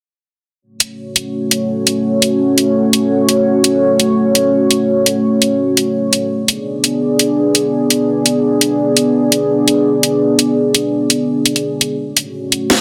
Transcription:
0.62 6.26 A3 medium
0.62 6.26 C#4 medium
0.62 6.26 F#4 medium
0.62 6.26 C#5 medium
0.80 closed hi-hat medium
1.16 closed hi-hat medium
1.51 closed hi-hat medium
1.87 closed hi-hat medium
2.22 closed hi-hat medium
2.58 closed hi-hat medium
2.93 closed hi-hat medium
3.29 closed hi-hat medium
3.64 closed hi-hat medium
4.00 closed hi-hat medium
4.35 closed hi-hat medium
4.71 closed hi-hat medium
5.06 closed hi-hat medium
5.42 closed hi-hat medium
5.77 closed hi-hat medium
6.13 closed hi-hat medium
6.31 11.95 B3 medium
6.31 11.95 D4 medium
6.31 11.95 G#4 medium
6.31 11.95 D5 medium
6.48 closed hi-hat medium
6.84 closed hi-hat medium
7.19 closed hi-hat medium
7.55 closed hi-hat medium
7.90 closed hi-hat medium
8.26 closed hi-hat medium
8.61 closed hi-hat medium
8.97 closed hi-hat medium
9.32 closed hi-hat medium
9.68 closed hi-hat medium
10.03 closed hi-hat medium
10.39 closed hi-hat medium
10.75 closed hi-hat medium
11.10 closed hi-hat medium
11.46 closed hi-hat medium
11.56 closed hi-hat soft
11.81 closed hi-hat medium
11.99 12.81 A3 medium
11.99 12.81 C#4 medium
11.99 12.81 F#4 medium
11.99 12.81 C#5 medium
12.17 closed hi-hat medium
12.52 closed hi-hat medium
12.70 snare loud

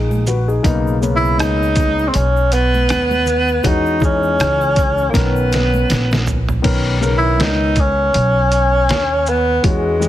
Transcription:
0.00 0.61 A#1 medium
0.00 0.25 D#4 medium
0.00 0.24 G#4 medium
0.11 high conga medium
0.11 shaker soft
0.26 0.47 F#4 medium
0.26 0.47 B4 medium
0.26 low conga soft
0.26 shaker soft
0.48 0.64 D#4 medium
0.48 0.84 G#4 medium
0.48 shaker soft
0.63 1.40 B1 loud
0.63 0.95 C#3 medium
0.63 0.95 A#3 medium
0.63 0.95 B3 medium
0.63 0.96 D#4 medium
0.63 kick loud
0.63 closed hi-hat medium
0.63 shaker medium
0.87 shaker soft
1.01 2.21 C#3 medium
1.01 2.22 A#3 medium
1.01 2.22 B3 medium
1.01 2.23 C#4 medium
1.01 shaker soft
1.16 1.40 E4 loud
1.25 shaker soft
1.39 2.11 C#2 medium
1.39 2.10 D#4 loud
1.39 cross-stick loud
1.39 closed hi-hat medium
1.39 shaker medium
1.63 shaker soft
1.76 kick medium
1.76 closed hi-hat medium
1.76 shaker medium
1.80 high conga medium
1.80 low conga medium
1.80 shaker medium
1.99 shaker soft
2.08 2.17 C4 medium
2.14 2.86 B1 loud
2.14 2.55 C#4 loud
2.14 closed hi-hat medium
2.14 shaker medium
2.36 shaker soft
2.52 3.69 B3 loud
2.52 closed hi-hat soft
2.52 shaker soft
2.74 high conga medium
2.74 shaker soft
2.89 3.61 D#2 medium
2.89 cross-stick loud
2.89 closed hi-hat medium
2.89 high conga soft
2.89 shaker medium
3.11 high conga medium
3.11 shaker soft
3.26 low conga soft
3.26 shaker soft
3.48 shaker soft
3.63 4.36 E2 loud
3.63 3.95 E3 medium
3.63 3.95 G#3 medium
3.63 3.95 C#4 medium
3.63 4.03 D#4 medium
3.63 3.96 F#4 medium
3.63 kick loud
3.63 closed hi-hat medium
3.63 shaker medium
3.86 shaker soft
4.00 5.14 E3 medium
4.00 5.14 G#3 medium
4.00 5.13 C#4 medium
4.00 5.15 D#4 medium
4.00 kick loud
4.00 low conga medium
4.00 shaker soft
4.03 5.12 C#4 loud
4.03 shaker soft
4.23 shaker soft
4.39 5.11 C#2 medium
4.39 cross-stick loud
4.39 closed hi-hat medium
4.39 shaker medium
4.61 shaker soft
4.76 kick medium
4.76 closed hi-hat soft
4.76 low conga medium
4.76 shaker medium
4.79 shaker medium
4.98 shaker soft
5.10 6.34 D#3 medium
5.10 5.20 A#3 medium
5.10 6.35 B3 medium
5.10 6.35 C#4 medium
5.10 kick loud
5.10 shaker medium
5.14 5.85 B1 loud
5.14 6.29 B3 medium
5.14 6.35 A#4 medium
5.14 snare medium
5.14 closed hi-hat medium
5.36 shaker medium
5.52 snare medium
5.52 closed hi-hat soft
5.52 shaker soft
5.74 high conga medium
5.74 shaker soft
5.90 6.61 A#1 medium
5.90 snare medium
5.90 closed hi-hat medium
5.90 high conga soft
5.90 shaker medium
6.11 snare medium
6.11 high conga medium
6.11 shaker soft
6.27 floor tom medium
6.27 low conga medium
6.27 shaker soft
6.49 floor tom medium
6.49 shaker soft
6.62 7.40 B1 loud
6.62 6.94 D#3 medium
6.62 6.94 B3 medium
6.62 6.95 C#4 medium
6.62 6.95 A#4 medium
6.62 kick loud
6.62 closed hi-hat medium
6.62 crash medium
7.01 7.09 C#3 medium
7.01 8.22 B3 medium
7.01 8.22 C#4 medium
7.01 8.22 A#4 medium
7.01 shaker soft
7.07 8.25 D#3 medium
7.18 7.44 E4 loud
7.40 8.11 C#2 medium
7.40 7.81 D#4 loud
7.40 snare loud
7.40 closed hi-hat medium
7.76 kick medium
7.76 closed hi-hat soft
7.76 shaker medium
7.80 9.30 C#4 loud
8.14 8.86 B1 loud
8.14 closed hi-hat medium
8.52 closed hi-hat soft
8.52 shaker soft
8.89 9.61 D#2 medium
8.89 snare loud
8.89 closed hi-hat medium
9.26 9.65 B3 medium
9.26 shaker soft
9.63 10.09 E2 loud
9.63 9.94 E3 medium
9.63 9.95 G#3 medium
9.63 10.09 G#3 medium
9.63 9.95 C#4 medium
9.63 9.95 F#4 medium
9.63 kick loud
9.63 closed hi-hat medium
9.99 10.09 E3 medium
9.99 10.09 G#3 medium
9.99 10.09 C#4 medium
9.99 10.09 G4 medium
9.99 shaker soft

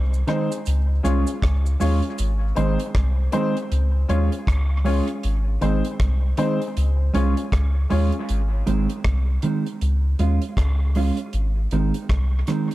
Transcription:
0.00 0.24 C2 loud
0.14 cabasa medium
0.27 0.48 D#3 medium
0.27 0.48 G#3 medium
0.27 0.48 C4 medium
0.27 0.48 D#4 medium
0.27 0.48 G#4 medium
0.27 0.48 C5 loud
0.27 cross-stick medium
0.27 closed hi-hat medium
0.52 closed hi-hat medium
0.52 cabasa medium
0.66 1.00 C#2 loud
0.66 closed hi-hat medium
0.66 cabasa medium
1.03 1.25 C2 medium
1.03 1.24 G#3 medium
1.03 1.24 C#4 medium
1.03 1.24 F4 medium
1.03 1.25 F4 medium
1.03 1.24 G#4 medium
1.03 1.24 C#5 medium
1.03 closed hi-hat medium
1.03 cabasa soft
1.27 1.33 G#4 soft
1.27 1.33 C#5 soft
1.27 closed hi-hat soft
1.27 cabasa medium
1.42 1.76 C#2 loud
1.42 kick loud
1.42 cross-stick loud
1.42 closed hi-hat medium
1.66 cabasa soft
1.80 2.01 D#2 medium
1.80 2.00 G#3 medium
1.80 2.00 C#4 medium
1.80 2.01 C#4 medium
1.80 2.00 F4 medium
1.80 2.01 F4 loud
1.80 2.01 G#4 medium
1.80 2.01 C#5 loud
1.80 open hi-hat medium
1.80 cabasa medium
2.02 closed hi-hat soft
2.18 2.53 G#1 loud
2.18 closed hi-hat medium
2.18 cabasa medium
2.55 2.77 G#1 loud
2.55 2.77 D#3 medium
2.55 2.77 G#3 medium
2.55 2.76 C4 medium
2.55 2.77 C4 medium
2.55 2.76 D#4 medium
2.55 2.77 G#4 medium
2.55 2.77 C5 medium
2.55 closed hi-hat medium
2.80 closed hi-hat medium
2.95 3.29 C2 loud
2.95 kick loud
2.95 cross-stick loud
2.95 closed hi-hat medium
3.32 3.53 D#3 medium
3.32 3.53 G#3 medium
3.32 3.53 C4 loud
3.32 3.54 C4 medium
3.32 3.53 D#4 medium
3.32 3.53 G#4 medium
3.32 3.53 C5 loud
3.32 closed hi-hat medium
3.57 closed hi-hat soft
3.72 4.05 C#2 medium
3.72 closed hi-hat medium
4.08 4.30 D#2 loud
4.08 4.29 G#3 medium
4.08 4.29 C#4 medium
4.08 4.30 C#4 medium
4.08 4.29 F4 medium
4.08 4.30 F4 medium
4.08 4.29 G#4 medium
4.08 4.29 C#5 loud
4.08 closed hi-hat medium
4.32 4.38 G#4 soft
4.32 4.38 C#5 soft
4.32 closed hi-hat medium
4.47 5.01 C#2 medium
4.47 kick loud
4.47 cross-stick loud
4.47 closed hi-hat medium
4.85 5.05 G#3 medium
4.85 5.05 C#4 medium
4.85 5.05 F4 medium
4.85 5.06 F4 medium
4.85 5.06 G#4 medium
4.85 5.06 C#5 medium
4.85 open hi-hat medium
5.07 closed hi-hat medium
5.23 5.58 G#1 loud
5.23 closed hi-hat medium
5.61 5.82 G#1 loud
5.61 5.82 D#3 medium
5.61 5.82 G#3 medium
5.61 5.81 C4 medium
5.61 5.82 C4 medium
5.61 5.82 D#4 medium
5.61 5.82 G#4 medium
5.61 5.82 C5 medium
5.61 closed hi-hat medium
5.85 closed hi-hat medium
6.00 6.34 C2 medium
6.00 kick loud
6.00 cross-stick loud
6.00 closed hi-hat medium
6.37 6.58 D#3 medium
6.37 6.58 G#3 medium
6.37 6.58 C4 medium
6.37 6.58 D#4 medium
6.37 6.58 G#4 medium
6.37 6.58 C5 loud
6.37 closed hi-hat medium
6.62 closed hi-hat soft
6.77 7.10 C#2 loud
6.77 closed hi-hat medium
7.14 7.35 C2 medium
7.14 7.34 G#3 medium
7.14 7.34 C#4 medium
7.14 7.34 F4 medium
7.14 7.34 G#4 medium
7.14 7.35 C#5 loud
7.14 closed hi-hat medium
7.37 7.43 G#4 soft
7.37 7.43 C#5 soft
7.37 closed hi-hat medium
7.52 7.86 C#2 medium
7.52 kick loud
7.52 cross-stick loud
7.52 closed hi-hat medium
7.90 8.12 D#2 medium
7.90 8.10 G#3 medium
7.90 8.10 C#4 medium
7.90 8.11 C#4 medium
7.90 8.10 F4 medium
7.90 8.11 F4 medium
7.90 8.10 G#4 medium
7.90 8.11 C#5 loud
7.90 open hi-hat medium
8.12 closed hi-hat soft
8.29 8.63 G#1 loud
8.29 closed hi-hat medium
8.66 8.87 G#1 loud
8.66 8.86 D#3 medium
8.66 8.87 G#3 medium
8.66 8.87 C4 loud
8.66 closed hi-hat medium
8.90 closed hi-hat medium
9.05 9.39 C2 medium
9.05 kick loud
9.05 cross-stick loud
9.05 closed hi-hat medium
9.42 9.63 D#3 medium
9.42 9.63 G#3 medium
9.42 9.64 C4 medium
9.42 closed hi-hat medium
9.66 closed hi-hat soft
9.81 10.15 C#2 medium
9.81 closed hi-hat medium
10.19 10.39 D#2 loud
10.19 10.39 G#3 medium
10.19 10.39 C#4 medium
10.19 10.40 F4 medium
10.19 closed hi-hat medium
10.42 closed hi-hat medium
10.57 11.11 C#2 medium
10.57 kick loud
10.57 cross-stick loud
10.57 closed hi-hat medium
10.95 11.15 G#3 medium
10.95 11.16 C#4 loud
10.95 11.16 F4 loud
10.95 open hi-hat medium
11.17 closed hi-hat medium
11.33 11.67 G#1 loud
11.33 closed hi-hat medium
11.71 11.92 G#1 loud
11.71 11.92 D#3 medium
11.71 11.92 G#3 loud
11.71 11.92 C4 medium
11.71 closed hi-hat medium
11.94 closed hi-hat medium
12.09 12.43 C2 loud
12.09 kick loud
12.09 cross-stick loud
12.09 closed hi-hat medium
12.47 12.68 D#3 medium
12.47 12.68 G#3 medium
12.47 12.68 C4 medium
12.47 cross-stick medium
12.47 closed hi-hat medium
12.71 closed hi-hat soft

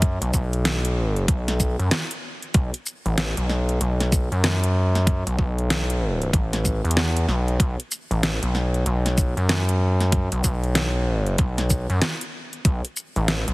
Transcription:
0.00 0.18 F#2 loud
0.00 kick loud
0.00 closed hi-hat medium
0.22 0.32 B1 loud
0.22 closed hi-hat medium
0.34 1.26 B1 loud
0.34 kick medium
0.34 shaker medium
0.53 closed hi-hat soft
0.65 snare loud
0.65 closed hi-hat medium
0.85 closed hi-hat medium
1.16 closed hi-hat soft
1.28 1.76 B1 medium
1.28 kick loud
1.28 closed hi-hat medium
1.48 snare soft
1.48 closed hi-hat medium
1.60 kick medium
1.60 shaker medium
1.79 1.89 F#2 loud
1.79 closed hi-hat soft
1.91 snare loud
1.91 closed hi-hat medium
2.11 closed hi-hat medium
2.43 closed hi-hat soft
2.54 2.71 B1 loud
2.54 kick loud
2.54 closed hi-hat medium
2.74 closed hi-hat medium
2.86 shaker medium
3.06 3.34 A1 loud
3.06 closed hi-hat soft
3.18 snare loud
3.18 closed hi-hat medium
3.37 3.79 B1 loud
3.37 closed hi-hat medium
3.49 snare soft
3.69 closed hi-hat soft
3.81 4.29 B1 loud
3.81 closed hi-hat medium
4.00 snare soft
4.00 closed hi-hat medium
4.12 kick loud
4.12 shaker medium
4.32 5.24 F#2 loud
4.32 closed hi-hat soft
4.44 snare loud
4.44 closed hi-hat medium
4.64 closed hi-hat medium
4.95 snare soft
4.95 closed hi-hat soft
5.07 kick loud
5.07 closed hi-hat medium
5.27 5.37 B1 loud
5.27 closed hi-hat medium
5.39 6.31 B1 loud
5.39 kick medium
5.58 closed hi-hat soft
5.70 snare loud
5.70 closed hi-hat medium
5.90 closed hi-hat medium
6.22 closed hi-hat soft
6.33 6.82 A1 loud
6.33 kick loud
6.33 closed hi-hat medium
6.53 snare soft
6.53 closed hi-hat medium
6.65 kick medium
6.65 shaker medium
6.84 7.26 E2 loud
6.84 closed hi-hat soft
6.91 closed hi-hat medium
6.97 snare loud
7.17 closed hi-hat medium
7.28 7.58 B1 loud
7.28 snare soft
7.48 closed hi-hat soft
7.60 7.76 B1 loud
7.60 kick loud
7.60 closed hi-hat medium
7.80 closed hi-hat medium
7.92 shaker medium
8.11 8.39 A1 loud
8.11 closed hi-hat soft
8.23 snare loud
8.23 closed hi-hat medium
8.43 8.84 B1 loud
8.43 closed hi-hat medium
8.55 snare soft
8.74 closed hi-hat soft
8.86 9.34 B1 loud
8.86 closed hi-hat medium
9.06 snare soft
9.06 closed hi-hat medium
9.18 kick loud
9.18 shaker medium
9.37 10.29 F#2 loud
9.37 closed hi-hat soft
9.49 snare loud
9.49 closed hi-hat medium
9.69 closed hi-hat medium
10.00 snare soft
10.00 closed hi-hat soft
10.12 kick loud
10.12 closed hi-hat medium
10.32 10.42 B1 loud
10.32 closed hi-hat medium
10.44 11.37 B1 loud
10.44 kick medium
10.44 shaker medium
10.64 closed hi-hat soft
10.75 snare loud
10.75 closed hi-hat medium
11.27 closed hi-hat soft
11.38 11.87 B1 loud
11.38 kick loud
11.38 closed hi-hat medium
11.58 snare soft
11.58 closed hi-hat medium
11.70 kick medium
11.70 shaker medium
11.90 12.00 F#2 loud
11.90 closed hi-hat soft
12.02 snare loud
12.02 closed hi-hat medium
12.21 closed hi-hat medium
12.53 closed hi-hat soft
12.65 12.82 B1 loud
12.65 kick loud
12.65 closed hi-hat medium
12.85 closed hi-hat medium
12.97 shaker medium
13.16 13.45 A1 loud
13.16 closed hi-hat soft
13.28 snare loud
13.28 closed hi-hat medium
13.48 13.54 B1 loud
13.48 closed hi-hat medium

